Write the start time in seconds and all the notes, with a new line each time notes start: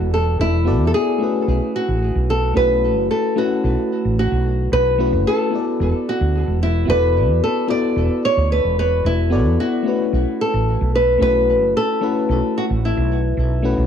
Already playing: B3 E4 F#4 A4 D5
0.00 E1
0.14 A4
0.39 E1 E4
0.65 B3 E4 F#4 A4 D5
0.80 E2
0.87 A4
0.94 G#4
1.18 A3 C#4 E4 F#4
1.23 B4
1.48 B1
1.76 F#4
1.88 A1
2.15 B1
2.30 A4
2.53 B1 A3 C#4 E4 F#4 B4
2.59 B4
2.97 F#1
3.11 A4
3.35 A3 C#4 E4 F#4 B4
3.64 B1
4.05 A1
4.19 F#4
4.32 B1
4.72 B1 B4
4.98 A3 C#4 E4 F#4 B4
5.13 F#1
5.27 A4
5.50 B3 E4 F#4 A4
5.55 D5
5.80 E1
6.09 F#4
6.21 D2
6.47 E1
6.63 E4
6.85 E1 B3 E4 F#4 A4
6.90 B4 D5
7.29 E2
7.44 A4
7.67 B3 E4 F#4 A4 D5
7.96 E1
8.25 C#5
8.37 D2
8.52 B4
8.64 E1
8.79 B4
9.04 E1 E4
9.30 B3 E4 F#4 A4 D5
9.45 E2
9.60 F#4
9.83 A3 C#4 E4 F#4
9.88 B4
10.13 B1
10.41 A4
10.54 A1
10.81 B1
10.95 B4
11.18 B1 A3 C#4 E4 F#4
11.22 B4
11.62 F#1
11.77 A4
12.01 A3 C#4 E4 F#4 B4
12.29 B1
12.58 F#4
12.70 A1
12.85 E4
12.97 B1
13.37 B1
13.62 A3 C#4 E4 F#4 B4
13.78 B1